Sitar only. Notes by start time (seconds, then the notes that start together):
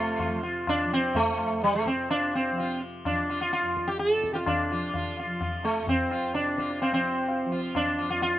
Already playing: A3 F4
0.20 F4
0.43 F4
0.69 D4
0.93 C4
1.16 A3
1.64 G3
1.75 A3
1.87 C4
2.10 D4
2.35 C4
2.59 F4
3.06 D4
3.30 F4
3.41 F4
3.53 F4
3.88 G4
3.99 A4
4.33 F4 G4
4.47 D4
4.72 F4
4.96 F4
5.19 F4
5.42 F4
5.65 A3
5.89 C4
6.12 F4
6.34 D4
6.59 F4
6.82 C4
6.94 C4
7.52 F4
7.76 D4
7.99 F4
8.10 F4
8.22 F4